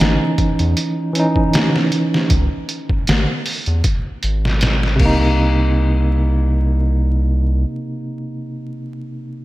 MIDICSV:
0, 0, Header, 1, 4, 480
1, 0, Start_track
1, 0, Tempo, 769231
1, 1437, Time_signature, 4, 2, 24, 8
1, 5895, End_track
2, 0, Start_track
2, 0, Title_t, "Tine electric piano"
2, 0, Program_c, 0, 4
2, 0, Control_c, 0, 64, 127
2, 0, Note_on_c, 0, 52, 89
2, 0, Note_on_c, 0, 61, 92
2, 0, Note_on_c, 0, 63, 106
2, 684, Note_off_c, 0, 52, 0
2, 694, Note_off_c, 0, 61, 0
2, 704, Note_off_c, 0, 63, 0
2, 706, Note_on_c, 0, 52, 80
2, 725, Note_on_c, 0, 61, 73
2, 745, Note_on_c, 0, 63, 85
2, 1404, Note_off_c, 0, 52, 0
2, 1414, Note_off_c, 0, 61, 0
2, 1424, Note_off_c, 0, 63, 0
2, 1445, Control_c, 0, 64, 0
2, 3093, Note_on_c, 0, 48, 84
2, 3123, Note_on_c, 0, 58, 79
2, 3154, Note_on_c, 0, 63, 95
2, 3459, Control_c, 0, 64, 127
2, 4954, Note_off_c, 0, 48, 0
2, 4984, Note_off_c, 0, 58, 0
2, 5015, Note_off_c, 0, 63, 0
2, 5895, End_track
3, 0, Start_track
3, 0, Title_t, "Analog synth bass"
3, 0, Program_c, 1, 38
3, 4, Note_on_c, 1, 32, 97
3, 114, Note_off_c, 1, 32, 0
3, 372, Note_on_c, 1, 40, 80
3, 467, Note_off_c, 1, 40, 0
3, 1441, Note_on_c, 1, 37, 98
3, 1552, Note_off_c, 1, 37, 0
3, 1925, Note_on_c, 1, 32, 96
3, 2034, Note_off_c, 1, 32, 0
3, 2292, Note_on_c, 1, 40, 77
3, 2387, Note_off_c, 1, 40, 0
3, 2644, Note_on_c, 1, 32, 90
3, 3118, Note_off_c, 1, 32, 0
3, 3121, Note_on_c, 1, 36, 96
3, 4774, Note_off_c, 1, 36, 0
3, 5895, End_track
4, 0, Start_track
4, 0, Title_t, "Drums"
4, 0, Note_on_c, 9, 42, 90
4, 8, Note_on_c, 9, 38, 109
4, 60, Note_off_c, 9, 42, 0
4, 70, Note_off_c, 9, 38, 0
4, 238, Note_on_c, 9, 36, 102
4, 238, Note_on_c, 9, 42, 69
4, 300, Note_off_c, 9, 42, 0
4, 301, Note_off_c, 9, 36, 0
4, 369, Note_on_c, 9, 42, 43
4, 431, Note_off_c, 9, 42, 0
4, 479, Note_on_c, 9, 42, 98
4, 541, Note_off_c, 9, 42, 0
4, 719, Note_on_c, 9, 42, 73
4, 781, Note_off_c, 9, 42, 0
4, 847, Note_on_c, 9, 36, 95
4, 909, Note_off_c, 9, 36, 0
4, 958, Note_on_c, 9, 42, 87
4, 968, Note_on_c, 9, 38, 113
4, 1020, Note_off_c, 9, 42, 0
4, 1031, Note_off_c, 9, 38, 0
4, 1096, Note_on_c, 9, 38, 43
4, 1159, Note_off_c, 9, 38, 0
4, 1197, Note_on_c, 9, 42, 64
4, 1259, Note_off_c, 9, 42, 0
4, 1337, Note_on_c, 9, 38, 47
4, 1399, Note_off_c, 9, 38, 0
4, 1435, Note_on_c, 9, 42, 89
4, 1438, Note_on_c, 9, 36, 109
4, 1497, Note_off_c, 9, 42, 0
4, 1500, Note_off_c, 9, 36, 0
4, 1677, Note_on_c, 9, 42, 66
4, 1739, Note_off_c, 9, 42, 0
4, 1806, Note_on_c, 9, 36, 94
4, 1869, Note_off_c, 9, 36, 0
4, 1918, Note_on_c, 9, 42, 85
4, 1928, Note_on_c, 9, 38, 117
4, 1980, Note_off_c, 9, 42, 0
4, 1991, Note_off_c, 9, 38, 0
4, 2157, Note_on_c, 9, 46, 83
4, 2219, Note_off_c, 9, 46, 0
4, 2286, Note_on_c, 9, 42, 44
4, 2348, Note_off_c, 9, 42, 0
4, 2396, Note_on_c, 9, 42, 103
4, 2398, Note_on_c, 9, 36, 127
4, 2458, Note_off_c, 9, 42, 0
4, 2460, Note_off_c, 9, 36, 0
4, 2637, Note_on_c, 9, 42, 64
4, 2699, Note_off_c, 9, 42, 0
4, 2778, Note_on_c, 9, 38, 49
4, 2841, Note_off_c, 9, 38, 0
4, 2876, Note_on_c, 9, 42, 89
4, 2887, Note_on_c, 9, 38, 116
4, 2939, Note_off_c, 9, 42, 0
4, 2949, Note_off_c, 9, 38, 0
4, 3017, Note_on_c, 9, 38, 50
4, 3079, Note_off_c, 9, 38, 0
4, 3117, Note_on_c, 9, 49, 83
4, 3118, Note_on_c, 9, 36, 109
4, 3180, Note_off_c, 9, 49, 0
4, 3181, Note_off_c, 9, 36, 0
4, 5895, End_track
0, 0, End_of_file